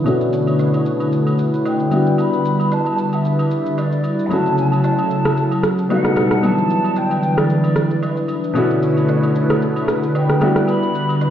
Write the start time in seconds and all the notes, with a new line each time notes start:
Already playing: D3 E4 B4
0.04 B2 A3 C#4 D4 E4 C#5, high agogo, shaker
0.08 F#4
0.21 shaker
0.33 shaker
0.47 high agogo, shaker
0.59 low woodblock, shaker
0.73 high agogo, shaker
0.86 shaker
1.00 high agogo, shaker
1.12 shaker
1.27 high agogo, shaker
1.38 shaker
1.53 shaker
1.65 G5, high agogo, low woodblock, shaker
1.80 shaker
1.90 G3 B3 D4 E4, high agogo, shaker
1.94 F#4
2.06 shaker
2.18 B5, high agogo, shaker
2.33 shaker
2.45 shaker
2.60 high agogo, shaker
2.71 A5, low woodblock, shaker
2.86 high agogo, shaker
2.98 shaker
3.13 E5, high agogo, shaker
3.25 shaker
3.39 high agogo, shaker
3.51 shaker
3.66 shaker
3.78 D5, high agogo, low woodblock, shaker
3.92 shaker
4.04 high agogo, shaker
4.19 shaker
4.26 F#3 A3 B5
4.31 C#3 F#3 C#4 E4 F#4 A4 A5, high agogo, shaker
4.46 shaker
4.58 A5, shaker
4.72 high agogo, shaker
4.84 low woodblock, shaker
4.98 high agogo, shaker
5.10 shaker
5.25 cross-stick, high agogo, shaker
5.37 shaker
5.52 high agogo, shaker
5.63 cross-stick, shaker
5.78 shaker
5.89 B2 G3 A3 B3 D#4 F#4 A4 F#5, high agogo, low woodblock, shaker
6.04 cross-stick, shaker
6.16 cross-stick, high agogo, shaker
6.31 cross-stick, shaker
6.41 D3 E3 G3 B3 D4 E4 B4 A5, high agogo, shaker
6.46 F#3
6.58 shaker
6.70 shaker
6.84 high agogo, shaker
6.96 G5, low woodblock, shaker
7.11 high agogo, shaker
7.23 shaker
7.37 D5, cross-stick, high agogo, shaker
7.49 shaker
7.64 high agogo, shaker
7.76 cross-stick, shaker
7.91 shaker
8.03 high agogo, low woodblock, shaker
8.17 shaker
8.28 high agogo, shaker
8.44 shaker
8.53 B2 A3 C#4 D4 E4 C#5, high agogo, shaker
8.58 F#4
8.70 shaker
8.82 shaker
8.97 high agogo, shaker
9.08 low woodblock, shaker
9.23 high agogo, shaker
9.35 shaker
9.50 cross-stick, high agogo, shaker
9.62 shaker
9.76 high agogo, shaker
9.88 cross-stick, shaker
10.03 shaker
10.15 G5, high agogo, low woodblock, shaker
10.29 cross-stick, shaker
10.39 G3 B3 D4 E4, cross-stick, high agogo, shaker
10.44 F#4
10.56 cross-stick, shaker
10.68 B5, high agogo, shaker
10.83 shaker
10.95 shaker
11.09 high agogo, shaker
11.21 B5, low woodblock, shaker